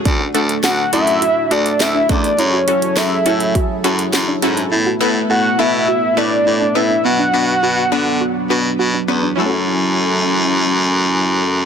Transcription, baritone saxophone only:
\new Staff \with { instrumentName = "Baritone saxophone" } { \clef bass \time 4/4 \key fis \minor \tempo 4 = 103 d,8 d,8 d,8 fis,8. r16 d,8 d,8 e,8 | fis,8 r8 fis,8 a,8. r16 fis,8 fis,8 gis,8 | a,8 a,8 a,8 b,8. r16 a,8 a,8 a,8 | b,8 b,8 b,8 d8. r16 b,8 b,8 e,8 |
fis,1 | }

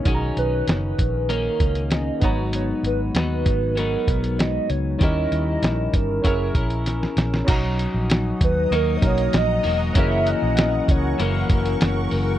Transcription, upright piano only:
\new Staff \with { instrumentName = "Upright piano" } { \time 4/4 \key b \major \tempo 4 = 97 <cis' dis' fis' gis' ais''>2.~ <cis' dis' fis' gis' ais''>8 <b dis' fis' ais''>8~ | <b dis' fis' ais''>2.~ <b dis' fis' ais''>8 r8 | <cis' e' g' ais'>2 <cis' e' gis' ais'>2 | <cis' dis' fis' ais''>2~ <cis' dis' fis' ais''>8 <cis' dis' fis' ais'>4. |
<cis' e' gis' ais'>1 | }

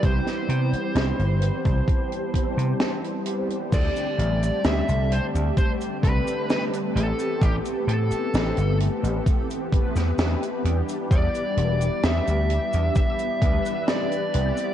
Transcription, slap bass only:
\new Staff \with { instrumentName = "Slap bass" } { \clef bass \time 4/4 \key e \phrygian \tempo 4 = 65 c,16 r16 c16 r16 c,16 g,,16 r16 c,16 r8. c16 r4 | d,16 r16 a,,16 r16 d,16 c,16 r16 d,16 r8 c,16 r8. a,,16 r16 | a,,16 r16 a,16 r16 a,,16 g,,16 r16 a,,16 r8. e,16 e,16 r16 e,16 r16 | e,16 r16 e,,16 r16 e,16 d,16 r16 e,16 r8 d,16 r8. c,16 r16 | }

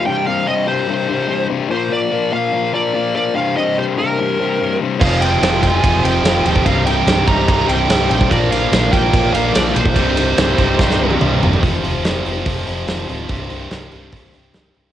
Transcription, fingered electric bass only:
\new Staff \with { instrumentName = "Fingered electric bass" } { \clef bass \time 4/4 \key c \minor \tempo 4 = 145 r1 | r1 | r1 | f,,4 f,,8 f,,8 f,,8 f,,8 f,,8 ees,,8 |
c,,4 c,,8 c,,8 c,,8 c,,8 c,,8 bes,,8 | bes,,4 bes,,8 bes,,8 bes,,8 bes,,8 bes,,8 b,,8 | c,,4 c,,8 c,,8 c,,8 c,,8 c,,8 g,,8 | f,,8 f,,8 f,,8 f,,8 f,,8 f,,8 f,,8 d,,8 |
c,,8 c,,8 c,,8 c,,8 c,,8 c,,8 c,,8 c,,8 | }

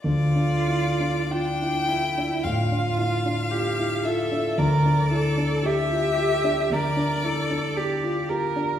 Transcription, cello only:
\new Staff \with { instrumentName = "Cello" } { \time 4/4 \key d \minor \tempo 4 = 56 f'4 d'8 e'8 f'4 g'8 a'8 | bes'8 a'8 g'4 bes'8 a'8 g'8 bes'8 | }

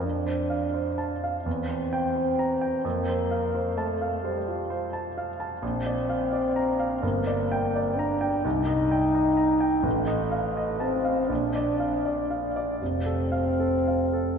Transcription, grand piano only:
\new Staff \with { instrumentName = "Grand piano" } { \time 6/8 \key f \mixolydian \tempo 4. = 43 f,16 c''16 f''16 c''16 a''16 f''16 e,16 c''16 g''16 c''16 bes''16 g''16 | f,16 c''16 f''16 c''16 a''16 f''16 c''16 f'16 c''16 a''16 f''16 a''16 | bes,,16 d''16 f''16 d''16 bes''16 f''16 g,,16 d''16 g''16 d''16 bes''16 g''16 | c,16 ees''16 g''16 ees''16 bes''16 g''16 a,,16 ees''16 f''16 ees''16 a''16 f''16 |
bes,,16 d''16 f''16 d''16 f''16 d''16 f,,16 a'16 f''16 a'16 f''16 a'16 | }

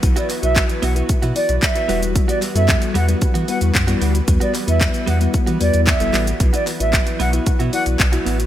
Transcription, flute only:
\new Staff \with { instrumentName = "Flute" } { \time 4/4 \key e \minor \tempo 4 = 113 r16 d''16 r16 e''8 r16 fis''16 r8. d''8 e''8. r16 | r16 d''16 r16 e''8 r16 fis''16 r8. fis''16 r4 r16 | r16 d''16 r16 e''8 r16 fis''16 r8. d''8 e''8. r16 | r16 d''16 r16 e''8 r16 fis''16 r8. fis''16 r4 r16 | }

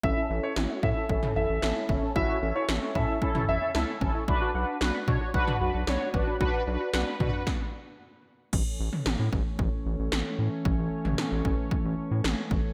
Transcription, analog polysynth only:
\new Staff \with { instrumentName = "Analog polysynth" } { \time 4/4 \key a \mixolydian \tempo 4 = 113 <cis' e' a'>8 <cis' e' a'>8 <cis' e' fis'>8 <cis' e' a'>8 <cis' e' a'>8 <cis' e' a'>8 <cis' e' a'>8 <cis' e' a'>8 | <cis' e' fis'>8 <cis' e' a'>8 <cis' e' a'>8 <cis' e' a'>8 <cis' e' a'>8 <cis' e' a'>8 <cis' e' a'>8 <cis' e' a'>8 | <d' fis' b'>8 <d' fis' b'>8 <d' fis' b'>8 <d' fis' cis''>8 <d' fis' b'>8 <d' fis' b'>8 <d' fis' cis''>8 <d' fis' b'>8 | <d' fis' b'>8 <d' fis' b'>8 <d' fis' b'>8 <d' fis' b'>8 r2 |
r1 | r1 | }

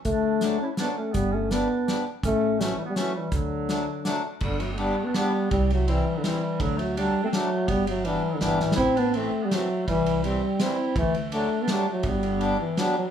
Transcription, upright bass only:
\new Staff \with { instrumentName = "Upright bass" } { \clef bass \time 3/4 \key d \major \tempo 4 = 165 d,2 r4 | g,,2 r4 | a,,2 r4 | d,2 r4 |
\key g \major g,,2 r4 | c,2 r4 | d,2 r4 | g,,2 g,,8 a,,8 |
a,,2 r4 | c,2 r4 | d,2 r4 | g,,2 r4 | }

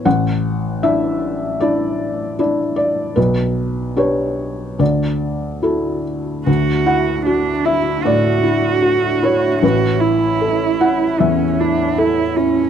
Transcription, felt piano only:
\new Staff \with { instrumentName = "Felt piano" } { \time 4/4 \key d \major \tempo 4 = 76 << { fis''4 e''4 d''4. d''8 | b'4 cis''4 d''4. r8 | r8 fis''4 e''8 d''4. cis''8 | b'4. fis''8 e''4. r8 | } \\ { a,,4 <d' e' d''>4 <d' e'>4 <d' e' d''>4 | b,,4 <d' g' b'>4 d,4 <e' fis' a'>4 | d,8 e'8 fis'8 e'8 a,8 e'8 fis'8 e'8 | a,,8 e'8 a'8 e'8 e,8 e'8 a'8 e'8 | } >> }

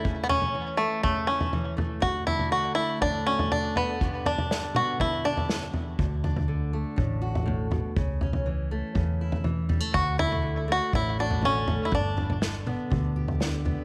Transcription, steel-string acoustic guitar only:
\new Staff \with { instrumentName = "Steel-string acoustic guitar" } { \clef bass \time 4/4 \key d \major \tempo 4 = 121 << { r8 cis'4 a4 e'4 a8 | r8 d'4 a4 fis'4 a8 | <d b d' g'>8 d'4 b4 g'4. | r8 d'4 a4 fis'4. |
r8 cis'4 a4 e'4 g16 a16 | r8 a4 a4 fis'4 a8 | r8 d'4 b4 g'4 b8 | } \\ { cis4 e4 cis4 e4 | d,4 d4 a,4 d4 | g,4 d4 d4 fis,8 e,8 | d,4 d4 a,4 a,8 b,8 |
cis4 e4 cis4 e4 | d,4 d4 a,4 d4 | g,4 d4 d4 d4 | } >> }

